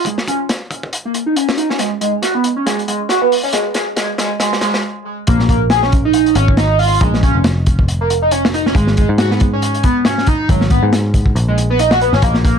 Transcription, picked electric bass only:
5.28 6.33 A#1 loud
6.35 6.98 G#1 loud
7.01 7.31 A#1 loud
7.35 8.72 F1 medium
8.75 9.05 G#1 loud
9.09 10.46 G#2 loud
10.49 10.79 G#1 loud
10.83 11.32 G#2 loud
11.35 12.09 A#1 loud
12.13 12.20 G#1 medium
12.22 12.59 A#1 loud

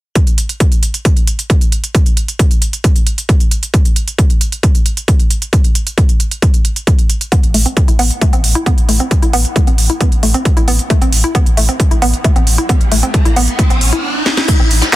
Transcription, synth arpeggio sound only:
7.32 7.41 B3 loud
7.54 7.60 A3 medium
7.66 7.74 C4 medium
7.88 7.94 E4 medium
7.99 8.08 B3 loud
8.21 8.27 A3 medium
8.33 8.41 C4 medium
8.55 8.61 E4 medium
8.66 8.75 B3 loud
8.89 8.94 A3 medium
9.00 9.08 C4 medium
9.22 9.28 E4 medium
9.33 9.42 B3 loud
9.56 9.62 A3 medium
9.67 9.76 C4 medium
9.90 9.95 E4 medium
10.01 10.09 B3 loud
10.23 10.29 A3 medium
10.34 10.43 C4 medium
10.57 10.62 E4 medium
10.68 10.76 B3 loud
10.90 10.96 A3 medium
11.02 11.10 C4 medium
11.24 11.29 E4 medium
11.35 11.44 B3 loud
11.57 11.63 A3 medium
11.69 11.77 C4 medium
11.91 11.97 E4 medium
12.02 12.11 B3 loud
12.24 12.30 A3 medium
12.36 12.44 C4 medium
12.58 12.64 E4 medium
12.69 12.78 B3 loud
12.92 12.97 A3 medium
13.03 13.11 C4 medium
13.25 13.31 E4 medium
13.36 13.45 B3 loud
13.59 13.65 A3 medium
13.70 13.79 C4 medium
13.93 13.98 E4 medium
14.48 14.54 A3 medium
14.60 14.68 C4 medium
14.82 14.88 E4 medium

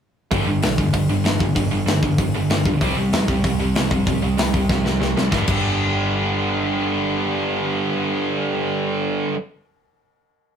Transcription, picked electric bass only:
0.32 0.47 G1 medium
0.47 0.62 G1 medium
0.63 0.77 B1 loud
0.78 0.93 G1 medium
0.94 1.09 G1 medium
1.09 1.24 G1 medium
1.25 1.40 G1 medium
1.41 1.55 G1 medium
1.56 1.71 G1 medium
1.72 1.86 G1 medium
1.87 2.02 G1 medium
2.03 2.18 G1 medium
2.18 2.33 G1 medium
2.34 2.49 G1 medium
2.50 2.65 G1 medium
2.65 2.80 D2 medium
2.81 2.95 C2 medium
2.96 3.11 C2 medium
3.12 3.27 E2 medium
3.28 3.43 C2 medium
3.44 3.59 C2 medium
3.59 3.74 C2 medium
3.75 3.90 C2 medium
3.91 4.06 C2 medium
4.07 4.22 C2 medium
4.22 4.37 C2 medium
4.39 4.53 C2 medium
4.54 4.69 C2 medium
4.69 4.84 C2 medium
4.85 4.99 C2 medium
5.00 5.15 C2 medium
5.16 5.31 C2 medium
5.32 5.41 G1 medium
5.48 9.31 G1 medium

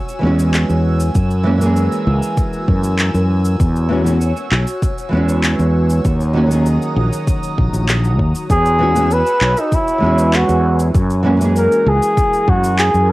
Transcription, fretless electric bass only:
0.23 0.64 E2 medium
0.70 1.10 E2 medium
1.15 1.87 F#2 medium
2.07 2.19 C#2 loud
2.68 3.09 F#2 medium
3.14 3.55 F#2 medium
3.60 4.32 E2 medium
4.51 4.64 B1 loud
5.13 5.54 E2 medium
5.59 6.00 E2 medium
6.05 6.77 D#2 medium
6.96 7.09 A#1 loud
7.58 7.70 A#1 medium
7.73 8.19 A#1 medium
8.19 8.32 D#2 medium
8.50 9.22 E2 medium
9.41 9.54 B1 medium
10.02 10.44 E2 medium
10.49 10.90 E2 medium
10.94 11.66 F#2 medium
11.86 11.99 C#2 medium
12.48 12.89 F#2 medium
12.94 13.12 F#2 medium

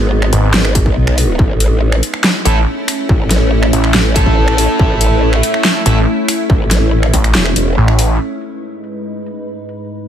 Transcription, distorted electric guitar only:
2.45 2.57 A3 medium
2.45 2.57 E4 medium
2.45 2.57 A4 medium
4.15 5.83 A3 medium
4.15 5.83 E4 medium
4.15 5.83 A4 medium
5.86 5.98 A3 medium
5.86 5.98 E4 medium
5.86 5.98 A4 medium

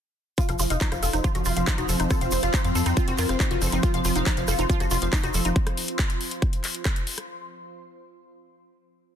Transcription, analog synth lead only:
0.38 0.43 F4 loud
0.49 0.54 F3 medium
0.59 0.65 F3 medium
0.70 0.76 D#4 loud
0.81 0.86 F3 medium
0.92 0.97 F3 medium
1.03 1.08 F4 medium
1.13 1.19 F3 medium
1.24 1.30 F3 medium
1.35 1.40 F3 medium
1.46 1.51 F4 loud
1.57 1.62 F3 medium
1.67 1.73 F3 medium
1.78 1.84 D#4 loud
1.89 1.94 F3 medium
2.00 2.05 F3 medium
2.11 2.16 A4 loud
2.21 2.27 C4 medium
2.32 2.38 C4 medium
2.43 2.48 F4 loud
2.54 2.59 C4 medium
2.64 2.70 C4 medium
2.75 2.81 A4 medium
2.86 2.92 C4 medium
2.97 3.02 C4 medium
3.08 3.13 C4 medium
3.18 3.24 A#4 loud
3.29 3.35 C4 medium
3.40 3.45 C4 medium
3.51 3.56 F4 medium
3.62 3.67 C4 medium
3.72 3.78 C4 medium
3.83 3.89 F4 loud
3.94 3.99 F3 medium
4.05 4.10 F3 medium
4.16 4.21 D#4 medium
4.26 4.32 F3 medium
4.37 4.43 F3 medium
4.48 4.53 F4 loud
4.59 4.64 F3 medium
4.70 4.75 F3 medium
4.80 4.86 F3 medium
4.91 4.97 F4 medium
5.02 5.07 F3 medium
5.13 5.18 F3 medium
5.24 5.29 D#4 loud
5.34 5.40 F3 medium
5.45 5.51 F3 medium

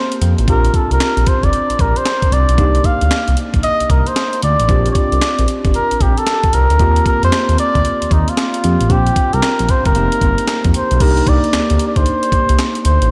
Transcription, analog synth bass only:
0.21 0.35 F2 loud
0.39 0.46 A1 medium
0.48 0.68 A#1 loud
0.91 0.98 C2 medium
1.17 1.25 A#1 medium
1.44 1.51 G1 medium
1.70 1.74 A#1 soft
1.79 1.93 A#1 medium
2.32 2.45 C2 medium
2.49 2.56 B1 medium
2.58 2.79 C2 loud
3.02 3.09 D2 medium
3.28 3.35 C2 medium
3.54 3.61 A#1 medium
3.81 3.84 C2 soft
3.90 4.03 C2 medium
4.43 4.56 D2 loud
4.60 4.67 A1 medium
4.69 4.90 A#1 loud
5.12 5.19 C2 medium
5.39 5.46 A#1 medium
5.65 5.72 G1 medium
5.92 5.95 A#1 soft
6.01 6.14 A#1 medium
6.54 6.67 C2 loud
6.70 6.77 D2 medium
6.80 7.00 D#2 loud
7.23 7.30 F2 medium
7.49 7.56 D#2 medium
7.75 7.83 D2 medium
8.02 8.06 D#2 soft
8.11 8.24 D#2 medium
8.64 8.77 F2 loud
8.81 8.88 A1 medium
8.90 9.11 A#1 loud
9.34 9.41 C2 loud
9.60 9.67 A#1 medium
9.86 9.93 G1 medium
9.96 10.09 F1 loud
10.13 10.16 G1 soft
10.22 10.35 G1 medium
10.65 10.72 F2 medium
10.92 10.99 B1 medium
11.00 11.21 C2 loud
11.27 11.40 C2 loud
11.54 11.60 D2 soft
11.71 11.78 D2 medium
11.96 12.04 D2 medium
12.32 12.39 C2 soft
12.50 12.57 C2 medium
12.85 12.98 D2 loud
13.02 13.09 A1 medium

